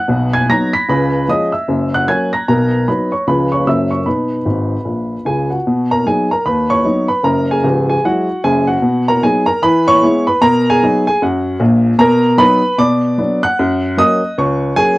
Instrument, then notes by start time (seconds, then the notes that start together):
upright piano
Already playing: F#5 F#6
0.08 B1 B2
0.33 G#5 G#6
0.49 F#3 B3 D#4 A#5 A#6
0.73 B5 B6
0.88 C#2 C#3 B4 B5
1.28 F3 G#3 C#4 D#5 D#6
1.52 E5 E6
1.68 F#1 F#2
1.94 F#5 F#6
2.08 F#3 A#3 C#4 G#5 G#6
2.33 A#5 A#6
2.48 B1 B2 A#4 A#5
2.88 F#3 B3 D#4 B4 B5
3.12 C#5 C#6
3.27 C#2 C#3 F3 G#3 C#4 B4 B5
3.52 C#5 C#6
3.66 F#1 F#2 F#3 A#3 C#4 E5 E6
3.91 C#5 C#6
4.06 B2 D#4 B4 B5
4.45 G#1 G#2
4.85 A#1 A#2
5.25 C#2 C#3 G#4 G#5
5.50 F#4 F#5
5.67 B2
5.91 A#4 A#5
6.06 F#3 B3 D#4 G#4 G#5
6.31 A#4 A#5
6.46 D#2 B4 B5
6.70 C#5 C#6
6.84 F#3 B3 D#4
7.08 B4 B5
7.23 F#1 F#2 A#4 A#5
7.51 G#4 G#5
7.63 C#1 C#2
7.90 G#4 G#5
8.05 F#3 G#3 E4 F#4 F#5
8.44 F#1 F#2 G#4 G#5
8.67 F#4 F#5
8.82 B2
9.08 A#4 A#5
9.23 F#3 B3 D#4 G#4 G#5
9.46 A#4 A#5
9.62 E3 B4 B5
9.88 C#5 C#6
10.03 G#3 B3 E4
10.27 B4 B5
10.41 B2 A#4 A#5
10.70 G#4 G#5
10.83 F#3 B3 D#4
11.07 G#4 G#5
11.22 F#2 F#4 F#5
11.60 A#1 A#2
11.98 B2 A#4 A#5
12.37 F#3 B3 D#4 B4 B5
12.78 B2 D5 D6
13.18 F#3 B3 D4
13.43 F#5 F#6
13.59 F#2
13.97 F#3 A#3 C#4 D#5 D#6
14.38 C#2 C#5 C#6
14.76 F#3 A#3 C#4 G#4 G#5